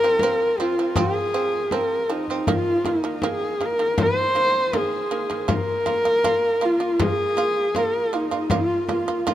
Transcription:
0.00 0.18 F3 medium
0.00 0.62 A#4 loud
0.00 frame drum soft
0.04 0.18 C4 medium
0.19 0.52 F3 medium
0.19 0.52 C4 medium
0.19 frame drum medium
0.58 0.74 F3 medium
0.58 0.74 C4 medium
0.58 1.00 F4 medium
0.58 frame drum soft
0.79 0.93 F3 medium
0.79 0.93 C4 medium
0.96 1.26 F3 medium
0.96 1.27 C4 loud
0.96 1.75 G#4 loud
0.96 frame drum medium
1.34 1.64 F3 medium
1.34 1.64 C4 medium
1.71 2.02 F3 medium
1.71 2.02 C4 medium
1.71 2.13 A#4 medium
1.71 frame drum medium
2.09 2.24 F3 medium
2.09 2.25 C4 medium
2.09 2.54 D#4 medium
2.28 2.44 F3 medium
2.28 2.44 C4 medium
2.28 frame drum soft
2.47 2.77 D#3 medium
2.47 2.78 A#3 medium
2.47 frame drum medium
2.53 2.89 F4 loud
2.85 3.00 D#3 medium
2.85 3.00 A#3 medium
2.85 3.29 D#4 medium
2.85 frame drum soft
3.02 3.19 D#3 medium
3.02 3.19 A#3 medium
3.02 frame drum soft
3.22 3.53 D#3 medium
3.22 3.53 A#3 loud
3.22 frame drum medium
3.27 3.67 G#4 medium
3.60 3.75 D#3 medium
3.60 3.76 A#3 medium
3.60 frame drum soft
3.65 4.00 A#4 medium
3.79 3.94 D#3 medium
3.79 3.94 A#3 medium
3.98 4.28 D#3 medium
3.98 4.28 A#3 medium
3.98 frame drum medium
4.02 4.79 C5 loud
4.35 4.66 D#3 medium
4.35 4.65 A#3 medium
4.73 5.03 D#3 medium
4.73 5.04 A#3 medium
4.73 frame drum medium
4.78 5.51 G#4 medium
5.11 5.26 D#3 medium
5.11 5.26 A#3 medium
5.30 5.45 D#3 medium
5.30 5.45 A#3 medium
5.30 frame drum soft
5.48 5.79 A#3 medium
5.48 5.79 F4 medium
5.48 frame drum medium
5.54 6.67 A#4 loud
5.86 6.01 A#3 medium
5.86 6.01 F4 medium
5.86 frame drum soft
6.05 6.20 A#3 medium
6.05 6.20 F4 medium
6.05 frame drum soft
6.24 6.54 A#3 medium
6.24 6.54 F4 medium
6.24 frame drum medium
6.61 6.77 A#3 medium
6.61 6.77 F4 medium
6.65 7.03 F4 medium
6.80 6.95 A#3 medium
6.80 6.96 F4 medium
6.99 7.30 A#3 medium
6.99 7.30 F4 medium
6.99 7.79 G#4 loud
6.99 frame drum medium
7.37 7.67 A#3 medium
7.37 7.68 F4 medium
7.75 8.06 A#3 medium
7.75 8.06 F4 medium
7.75 8.17 A#4 medium
7.75 frame drum medium
8.13 8.28 A#3 medium
8.13 8.55 D#4 medium
8.13 8.28 F4 medium
8.31 8.47 A#3 medium
8.31 8.47 F4 medium
8.31 frame drum soft
8.50 8.81 A#3 medium
8.50 8.81 F4 medium
8.50 8.90 F4 medium
8.50 frame drum medium
8.89 9.04 A#3 medium
8.89 9.04 F4 medium
8.89 9.17 F4 medium
8.89 frame drum soft
9.08 9.23 A#3 medium
9.08 9.23 F4 medium
9.08 frame drum soft
9.17 9.29 F4 medium
9.27 9.34 A#3 loud
9.27 9.34 D#4 medium
9.27 9.34 F4 medium
9.27 frame drum medium

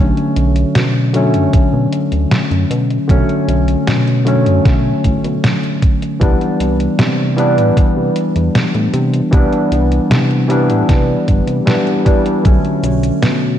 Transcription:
0.00 0.12 B1 loud
0.00 1.09 D3 medium
0.00 1.10 F#3 medium
0.00 1.10 A3 medium
0.00 1.11 C#4 loud
0.17 closed hi-hat soft
0.36 0.64 B1 medium
0.36 closed hi-hat medium
0.56 closed hi-hat medium
0.75 1.36 B2 loud
0.75 snare loud
0.75 closed hi-hat medium
1.13 3.04 D3 medium
1.13 3.05 F#3 medium
1.13 3.05 A3 medium
1.13 3.06 C#4 loud
1.13 closed hi-hat medium
1.34 1.48 F#2 medium
1.34 closed hi-hat medium
1.53 1.69 B2 soft
1.53 kick loud
1.53 closed hi-hat medium
1.73 1.87 B2 medium
1.93 closed hi-hat medium
2.12 2.26 D2 medium
2.12 closed hi-hat medium
2.31 snare loud
2.31 closed hi-hat medium
2.51 2.65 F#2 medium
2.51 closed hi-hat soft
2.71 2.98 B2 loud
2.71 closed hi-hat medium
2.90 closed hi-hat medium
3.08 3.23 B1 loud
3.08 4.21 D3 loud
3.08 4.21 F#3 medium
3.08 4.22 A3 medium
3.08 4.22 C#4 loud
3.08 kick loud
3.08 closed hi-hat medium
3.29 closed hi-hat soft
3.48 3.76 B1 medium
3.48 closed hi-hat medium
3.68 closed hi-hat medium
3.87 4.48 B2 loud
3.87 snare loud
3.87 closed hi-hat medium
4.08 closed hi-hat soft
4.25 6.16 D3 medium
4.25 6.16 F#3 medium
4.25 6.17 A3 medium
4.25 6.17 C#4 loud
4.25 closed hi-hat medium
4.46 4.60 F#2 medium
4.46 closed hi-hat medium
4.65 4.93 B1 medium
4.65 kick loud
4.65 snare medium
4.65 closed hi-hat medium
5.04 5.18 A1 loud
5.04 kick medium
5.04 closed hi-hat medium
5.24 5.38 B2 medium
5.24 closed hi-hat medium
5.44 snare loud
5.44 closed hi-hat medium
5.63 closed hi-hat soft
5.82 kick loud
5.82 closed hi-hat medium
6.02 closed hi-hat medium
6.20 6.35 C2 loud
6.20 7.33 E3 medium
6.20 7.33 G3 medium
6.20 7.34 B3 medium
6.20 7.34 D4 loud
6.20 kick loud
6.20 closed hi-hat medium
6.41 closed hi-hat soft
6.60 6.88 C2 medium
6.60 closed hi-hat medium
6.80 closed hi-hat medium
6.99 7.59 C3 loud
6.99 snare loud
6.99 closed hi-hat medium
7.36 9.28 E3 loud
7.36 9.28 G3 medium
7.36 9.28 B3 medium
7.36 9.29 D4 loud
7.36 closed hi-hat medium
7.57 7.71 A2 medium
7.57 closed hi-hat medium
7.77 7.93 C3 soft
7.77 kick loud
7.77 closed hi-hat medium
7.97 8.10 C3 medium
8.16 closed hi-hat medium
8.36 8.49 E2 medium
8.36 closed hi-hat medium
8.55 snare loud
8.55 closed hi-hat medium
8.75 8.88 A2 medium
8.75 closed hi-hat soft
8.94 9.21 C3 loud
8.94 closed hi-hat medium
9.14 closed hi-hat medium
9.31 9.47 C2 loud
9.31 10.45 E3 loud
9.31 10.45 G3 medium
9.31 10.45 B3 medium
9.31 10.46 D4 loud
9.31 kick loud
9.31 closed hi-hat medium
9.53 closed hi-hat soft
9.72 9.99 C2 medium
9.72 closed hi-hat medium
9.92 closed hi-hat medium
10.10 10.71 C3 loud
10.10 snare loud
10.10 closed hi-hat medium
10.31 closed hi-hat soft
10.48 11.62 E3 medium
10.48 11.62 G3 medium
10.48 11.63 B3 medium
10.48 11.64 D4 loud
10.48 closed hi-hat medium
10.69 10.83 A2 medium
10.69 closed hi-hat medium
10.89 11.16 C2 medium
10.89 kick loud
10.89 snare medium
10.89 closed hi-hat medium
11.28 11.42 G1 loud
11.28 kick medium
11.28 closed hi-hat medium
11.47 11.61 C3 medium
11.47 closed hi-hat medium
11.66 12.01 E3 medium
11.66 12.01 G3 medium
11.66 12.01 B3 medium
11.66 12.01 D4 medium
11.66 snare loud
11.66 closed hi-hat medium
11.87 closed hi-hat soft
12.05 12.40 E3 medium
12.05 12.40 G3 medium
12.05 12.40 B3 medium
12.05 12.41 D4 medium
12.05 kick loud
12.05 closed hi-hat medium
12.26 closed hi-hat medium
12.43 12.59 B1 loud
12.43 13.56 D3 medium
12.43 13.57 F#3 medium
12.43 13.57 A3 medium
12.43 13.58 C#4 loud
12.43 kick loud
12.43 closed hi-hat medium
12.43 cabasa soft
12.64 closed hi-hat soft
12.83 13.11 B1 medium
12.83 closed hi-hat medium
12.83 cabasa medium
13.03 closed hi-hat soft
13.03 cabasa soft
13.22 13.59 B2 loud
13.22 snare loud
13.22 closed hi-hat medium
13.22 cabasa soft

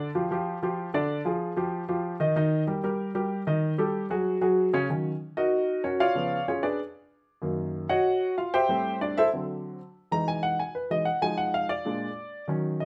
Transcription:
0.15 0.28 F3 medium
0.15 0.28 F4 medium
0.15 0.28 G4 medium
0.31 0.57 F3 medium
0.31 0.57 F4 medium
0.31 0.57 G4 medium
0.63 0.88 F3 medium
0.63 0.89 F4 medium
0.63 0.89 G4 medium
0.94 1.20 D3 medium
0.94 1.20 D4 medium
0.94 1.20 D5 medium
1.25 1.51 F3 medium
1.25 1.51 F4 medium
1.25 1.52 G#4 medium
1.56 1.83 F3 medium
1.56 1.83 F4 medium
1.56 1.83 G4 medium
1.89 2.15 F3 medium
1.89 2.15 F4 medium
1.89 2.15 G4 medium
2.20 2.33 D#3 medium
2.20 2.33 D#4 medium
2.20 2.33 D#5 medium
2.36 2.62 D#3 medium
2.36 2.62 D#4 medium
2.36 2.62 D#5 medium
2.67 2.80 G3 medium
2.67 2.81 G4 medium
2.67 2.81 A#4 medium
2.84 3.10 G3 medium
2.84 3.10 G4 medium
2.84 3.10 A#4 medium
3.15 3.41 G3 medium
3.15 3.41 G4 medium
3.15 3.41 A#4 medium
3.47 3.73 D#3 medium
3.47 3.73 D#4 medium
3.47 3.73 D#5 medium
3.78 4.04 G3 medium
3.78 4.05 G4 medium
3.78 4.05 A4 medium
4.10 4.36 F#3 medium
4.10 4.36 F#4 medium
4.10 4.37 G#4 medium
4.41 4.68 F#3 medium
4.41 4.68 F#4 medium
4.41 4.68 G#4 medium
4.73 4.86 C#3 medium
4.73 4.87 C#4 medium
4.73 4.87 C#5 medium
4.89 5.10 D#3 medium
4.89 5.11 F#3 medium
4.89 5.11 C#4 medium
5.37 5.81 D#4 medium
5.37 5.81 F#4 medium
5.37 5.81 A#4 medium
5.37 5.81 D#5 medium
5.84 6.00 C#4 medium
5.84 6.00 F#4 medium
5.84 6.00 A#4 medium
5.84 5.99 C#5 medium
6.00 6.44 F4 medium
6.00 6.44 C#5 medium
6.00 6.44 D5 medium
6.00 6.44 F5 loud
6.15 6.36 C#3 medium
6.15 6.37 F3 medium
6.15 6.37 B3 medium
6.48 6.63 C#4 medium
6.48 6.63 F4 medium
6.48 6.62 G#4 medium
6.48 6.63 C#5 medium
6.63 6.79 D4 medium
6.63 6.79 G#4 medium
6.63 6.78 B4 medium
6.63 6.78 D5 medium
7.42 7.87 F#2 medium
7.42 7.87 D#3 medium
7.42 7.88 A#3 medium
7.89 8.34 F#4 medium
7.89 8.34 C#5 medium
7.89 8.34 D#5 medium
7.89 8.34 F#5 loud
8.38 8.53 F4 medium
8.38 8.53 F5 medium
8.54 8.98 G4 medium
8.54 8.98 C5 medium
8.54 8.98 E5 medium
8.54 8.98 G5 loud
8.69 9.14 A2 medium
8.69 9.14 G3 medium
8.69 9.15 C4 medium
9.01 9.17 D4 medium
9.01 9.16 D5 medium
9.18 9.27 E4 medium
9.18 9.27 A4 medium
9.18 9.27 C5 medium
9.18 9.27 E5 loud
9.33 9.78 D3 medium
9.33 9.78 F#3 soft
9.33 9.78 C4 medium
10.11 10.57 E3 medium
10.11 10.57 G#3 soft
10.11 10.57 D#4 medium
10.11 10.27 A#5 loud
10.28 10.43 G#5 loud
10.43 10.58 F#5 medium
10.60 10.75 G#5 medium
10.75 10.90 B4 medium
10.90 11.05 E3 soft
10.90 11.05 G#3 soft
10.90 11.05 D#4 medium
10.90 11.06 D#5 medium
11.05 11.21 F#5 medium
11.21 11.67 F3 medium
11.21 11.67 G#3 medium
11.21 11.67 D#4 medium
11.21 11.38 G#5 loud
11.38 11.53 F#5 medium
11.54 11.69 F5 medium
11.69 12.45 D5 medium
11.85 12.06 A#2 medium
11.85 12.07 G#3 medium
11.85 12.07 D4 medium
12.48 12.85 D#3 medium
12.48 12.85 F#3 medium
12.48 12.85 C#4 medium
12.80 12.85 D#5 medium

